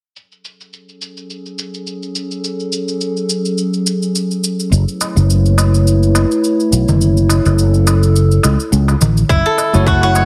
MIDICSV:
0, 0, Header, 1, 7, 480
1, 0, Start_track
1, 0, Key_signature, 3, "minor"
1, 0, Tempo, 571429
1, 133, Time_signature, 4, 2, 24, 8
1, 8610, End_track
2, 0, Start_track
2, 0, Title_t, "Ambient pad"
2, 0, Program_c, 0, 92
2, 130, Note_on_c, 0, 69, 88
2, 132, Note_on_c, 0, 54, 80
2, 134, Note_on_c, 0, 61, 73
2, 136, Note_on_c, 0, 68, 74
2, 3938, Note_off_c, 0, 69, 0
2, 3939, Note_off_c, 0, 54, 0
2, 3940, Note_off_c, 0, 61, 0
2, 3941, Note_off_c, 0, 68, 0
2, 3965, Note_on_c, 0, 64, 76
2, 3967, Note_on_c, 0, 57, 82
2, 3967, Note_on_c, 0, 71, 76
2, 3967, Note_on_c, 0, 73, 89
2, 5871, Note_off_c, 0, 71, 0
2, 5892, Note_on_c, 0, 69, 81
2, 7776, Note_off_c, 0, 57, 0
2, 7776, Note_off_c, 0, 64, 0
2, 7777, Note_off_c, 0, 73, 0
2, 7793, Note_off_c, 0, 69, 0
2, 8610, End_track
3, 0, Start_track
3, 0, Title_t, "Guzheng"
3, 0, Program_c, 1, 107
3, 7811, Note_on_c, 1, 64, 68
3, 7944, Note_on_c, 1, 69, 63
3, 8294, Note_on_c, 1, 66, 69
3, 8422, Note_off_c, 1, 66, 0
3, 8426, Note_on_c, 1, 66, 89
3, 8533, Note_on_c, 1, 73, 70
3, 8610, Note_off_c, 1, 64, 0
3, 8610, Note_off_c, 1, 66, 0
3, 8610, Note_off_c, 1, 69, 0
3, 8610, Note_off_c, 1, 73, 0
3, 8610, End_track
4, 0, Start_track
4, 0, Title_t, "Tine electric piano"
4, 0, Program_c, 2, 4
4, 8176, Note_on_c, 2, 57, 76
4, 8181, Note_on_c, 2, 64, 67
4, 8186, Note_on_c, 2, 66, 64
4, 8193, Note_on_c, 2, 73, 80
4, 8389, Note_off_c, 2, 57, 0
4, 8391, Note_off_c, 2, 64, 0
4, 8394, Note_off_c, 2, 66, 0
4, 8397, Note_off_c, 2, 73, 0
4, 8406, Note_on_c, 2, 57, 77
4, 8417, Note_on_c, 2, 64, 73
4, 8429, Note_on_c, 2, 66, 70
4, 8440, Note_on_c, 2, 73, 83
4, 8610, Note_off_c, 2, 57, 0
4, 8610, Note_off_c, 2, 64, 0
4, 8610, Note_off_c, 2, 66, 0
4, 8610, Note_off_c, 2, 73, 0
4, 8610, End_track
5, 0, Start_track
5, 0, Title_t, "Fretless electric bass"
5, 0, Program_c, 3, 35
5, 3962, Note_on_c, 3, 30, 92
5, 4058, Note_off_c, 3, 30, 0
5, 4336, Note_on_c, 3, 30, 92
5, 5234, Note_off_c, 3, 30, 0
5, 5645, Note_on_c, 3, 35, 77
5, 5739, Note_off_c, 3, 35, 0
5, 5780, Note_on_c, 3, 30, 87
5, 6196, Note_off_c, 3, 30, 0
5, 6261, Note_on_c, 3, 30, 97
5, 7036, Note_off_c, 3, 30, 0
5, 7090, Note_on_c, 3, 37, 87
5, 7182, Note_off_c, 3, 37, 0
5, 7325, Note_on_c, 3, 37, 92
5, 7501, Note_off_c, 3, 37, 0
5, 7566, Note_on_c, 3, 33, 87
5, 7741, Note_off_c, 3, 33, 0
5, 7807, Note_on_c, 3, 30, 94
5, 7900, Note_off_c, 3, 30, 0
5, 8183, Note_on_c, 3, 30, 97
5, 8610, Note_off_c, 3, 30, 0
5, 8610, End_track
6, 0, Start_track
6, 0, Title_t, "Darbuka"
6, 4209, Note_on_c, 9, 62, 55
6, 4293, Note_off_c, 9, 62, 0
6, 4686, Note_on_c, 9, 63, 58
6, 4770, Note_off_c, 9, 63, 0
6, 5166, Note_on_c, 9, 63, 52
6, 5250, Note_off_c, 9, 63, 0
6, 5784, Note_on_c, 9, 64, 80
6, 5868, Note_off_c, 9, 64, 0
6, 6128, Note_on_c, 9, 62, 64
6, 6212, Note_off_c, 9, 62, 0
6, 6269, Note_on_c, 9, 63, 34
6, 6353, Note_off_c, 9, 63, 0
6, 6612, Note_on_c, 9, 63, 58
6, 6696, Note_off_c, 9, 63, 0
6, 7084, Note_on_c, 9, 63, 60
6, 7168, Note_off_c, 9, 63, 0
6, 7462, Note_on_c, 9, 62, 48
6, 7546, Note_off_c, 9, 62, 0
6, 7574, Note_on_c, 9, 64, 89
6, 7658, Note_off_c, 9, 64, 0
6, 8048, Note_on_c, 9, 62, 67
6, 8132, Note_off_c, 9, 62, 0
6, 8181, Note_on_c, 9, 63, 38
6, 8265, Note_off_c, 9, 63, 0
6, 8528, Note_on_c, 9, 63, 65
6, 8610, Note_off_c, 9, 63, 0
6, 8610, End_track
7, 0, Start_track
7, 0, Title_t, "Drums"
7, 136, Note_on_c, 9, 82, 37
7, 220, Note_off_c, 9, 82, 0
7, 268, Note_on_c, 9, 82, 19
7, 352, Note_off_c, 9, 82, 0
7, 375, Note_on_c, 9, 82, 65
7, 459, Note_off_c, 9, 82, 0
7, 509, Note_on_c, 9, 82, 30
7, 593, Note_off_c, 9, 82, 0
7, 615, Note_on_c, 9, 82, 35
7, 699, Note_off_c, 9, 82, 0
7, 746, Note_on_c, 9, 82, 17
7, 830, Note_off_c, 9, 82, 0
7, 853, Note_on_c, 9, 82, 68
7, 937, Note_off_c, 9, 82, 0
7, 984, Note_on_c, 9, 82, 30
7, 1068, Note_off_c, 9, 82, 0
7, 1093, Note_on_c, 9, 82, 37
7, 1177, Note_off_c, 9, 82, 0
7, 1225, Note_on_c, 9, 82, 19
7, 1309, Note_off_c, 9, 82, 0
7, 1331, Note_on_c, 9, 82, 71
7, 1415, Note_off_c, 9, 82, 0
7, 1463, Note_on_c, 9, 82, 30
7, 1547, Note_off_c, 9, 82, 0
7, 1570, Note_on_c, 9, 82, 41
7, 1654, Note_off_c, 9, 82, 0
7, 1702, Note_on_c, 9, 82, 19
7, 1786, Note_off_c, 9, 82, 0
7, 1809, Note_on_c, 9, 82, 73
7, 1893, Note_off_c, 9, 82, 0
7, 1942, Note_on_c, 9, 82, 27
7, 2026, Note_off_c, 9, 82, 0
7, 2051, Note_on_c, 9, 82, 43
7, 2135, Note_off_c, 9, 82, 0
7, 2182, Note_on_c, 9, 82, 19
7, 2266, Note_off_c, 9, 82, 0
7, 2288, Note_on_c, 9, 82, 70
7, 2372, Note_off_c, 9, 82, 0
7, 2421, Note_on_c, 9, 82, 33
7, 2505, Note_off_c, 9, 82, 0
7, 2527, Note_on_c, 9, 82, 39
7, 2611, Note_off_c, 9, 82, 0
7, 2661, Note_on_c, 9, 82, 19
7, 2745, Note_off_c, 9, 82, 0
7, 2767, Note_on_c, 9, 82, 67
7, 2851, Note_off_c, 9, 82, 0
7, 2900, Note_on_c, 9, 82, 32
7, 2984, Note_off_c, 9, 82, 0
7, 3006, Note_on_c, 9, 82, 41
7, 3090, Note_off_c, 9, 82, 0
7, 3138, Note_on_c, 9, 82, 21
7, 3222, Note_off_c, 9, 82, 0
7, 3247, Note_on_c, 9, 82, 77
7, 3331, Note_off_c, 9, 82, 0
7, 3380, Note_on_c, 9, 82, 30
7, 3464, Note_off_c, 9, 82, 0
7, 3489, Note_on_c, 9, 82, 45
7, 3573, Note_off_c, 9, 82, 0
7, 3621, Note_on_c, 9, 82, 21
7, 3705, Note_off_c, 9, 82, 0
7, 3728, Note_on_c, 9, 82, 75
7, 3812, Note_off_c, 9, 82, 0
7, 3860, Note_on_c, 9, 82, 29
7, 3944, Note_off_c, 9, 82, 0
7, 3970, Note_on_c, 9, 82, 42
7, 4054, Note_off_c, 9, 82, 0
7, 4101, Note_on_c, 9, 82, 20
7, 4185, Note_off_c, 9, 82, 0
7, 4207, Note_on_c, 9, 82, 75
7, 4291, Note_off_c, 9, 82, 0
7, 4341, Note_on_c, 9, 82, 32
7, 4425, Note_off_c, 9, 82, 0
7, 4453, Note_on_c, 9, 82, 41
7, 4537, Note_off_c, 9, 82, 0
7, 4583, Note_on_c, 9, 82, 19
7, 4667, Note_off_c, 9, 82, 0
7, 4691, Note_on_c, 9, 82, 74
7, 4775, Note_off_c, 9, 82, 0
7, 4825, Note_on_c, 9, 82, 34
7, 4909, Note_off_c, 9, 82, 0
7, 4933, Note_on_c, 9, 82, 43
7, 5017, Note_off_c, 9, 82, 0
7, 5064, Note_on_c, 9, 82, 20
7, 5148, Note_off_c, 9, 82, 0
7, 5170, Note_on_c, 9, 82, 78
7, 5254, Note_off_c, 9, 82, 0
7, 5304, Note_on_c, 9, 82, 30
7, 5388, Note_off_c, 9, 82, 0
7, 5411, Note_on_c, 9, 82, 43
7, 5495, Note_off_c, 9, 82, 0
7, 5543, Note_on_c, 9, 82, 21
7, 5627, Note_off_c, 9, 82, 0
7, 5650, Note_on_c, 9, 82, 76
7, 5734, Note_off_c, 9, 82, 0
7, 5782, Note_on_c, 9, 82, 31
7, 5866, Note_off_c, 9, 82, 0
7, 5890, Note_on_c, 9, 82, 42
7, 5974, Note_off_c, 9, 82, 0
7, 6023, Note_on_c, 9, 82, 22
7, 6107, Note_off_c, 9, 82, 0
7, 6133, Note_on_c, 9, 82, 73
7, 6217, Note_off_c, 9, 82, 0
7, 6263, Note_on_c, 9, 82, 32
7, 6347, Note_off_c, 9, 82, 0
7, 6371, Note_on_c, 9, 82, 40
7, 6455, Note_off_c, 9, 82, 0
7, 6503, Note_on_c, 9, 82, 20
7, 6587, Note_off_c, 9, 82, 0
7, 6612, Note_on_c, 9, 82, 76
7, 6696, Note_off_c, 9, 82, 0
7, 6745, Note_on_c, 9, 82, 35
7, 6829, Note_off_c, 9, 82, 0
7, 6853, Note_on_c, 9, 82, 41
7, 6937, Note_off_c, 9, 82, 0
7, 6984, Note_on_c, 9, 82, 22
7, 7068, Note_off_c, 9, 82, 0
7, 7090, Note_on_c, 9, 82, 82
7, 7174, Note_off_c, 9, 82, 0
7, 7223, Note_on_c, 9, 82, 33
7, 7307, Note_off_c, 9, 82, 0
7, 7331, Note_on_c, 9, 82, 45
7, 7415, Note_off_c, 9, 82, 0
7, 7464, Note_on_c, 9, 82, 22
7, 7548, Note_off_c, 9, 82, 0
7, 7571, Note_on_c, 9, 82, 75
7, 7655, Note_off_c, 9, 82, 0
7, 7705, Note_on_c, 9, 82, 30
7, 7789, Note_off_c, 9, 82, 0
7, 7807, Note_on_c, 9, 36, 100
7, 7811, Note_on_c, 9, 82, 32
7, 7891, Note_off_c, 9, 36, 0
7, 7895, Note_off_c, 9, 82, 0
7, 8051, Note_on_c, 9, 82, 75
7, 8135, Note_off_c, 9, 82, 0
7, 8182, Note_on_c, 9, 82, 41
7, 8266, Note_off_c, 9, 82, 0
7, 8287, Note_on_c, 9, 36, 99
7, 8289, Note_on_c, 9, 82, 29
7, 8371, Note_off_c, 9, 36, 0
7, 8373, Note_off_c, 9, 82, 0
7, 8529, Note_on_c, 9, 82, 73
7, 8610, Note_off_c, 9, 82, 0
7, 8610, End_track
0, 0, End_of_file